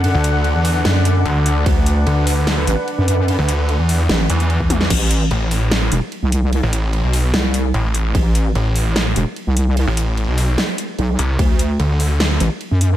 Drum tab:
CC |----------------|----------------|----------------|x---------------|
RD |x---x---x---x---|x---x---x---x---|x---x---x---x---|x---x---x---x---|
HH |--x---o---x---x-|--x---o---x---x-|--x---o---xx--x-|--x---o---x---x-|
SD |--------o-------|--------o-------|--------o------o|--------o-------|
T1 |----------------|----------------|--------------o-|----------------|
BD |----------------|o---------------|-------------o--|o---------------|

CC |----------------|----------------|----------------|----------------|
RD |x---x---x---x---|x---x---x---x---|x---x---x---x---|x---x---x---x---|
HH |--x---o---x---x-|--x---o---x---x-|--x---o---x---x-|--x---o---x---x-|
SD |--------o-------|--------o-------|--------o-------|--------o-------|
T1 |----------------|----------------|----------------|----------------|
BD |----------------|o---------------|----------------|o---------------|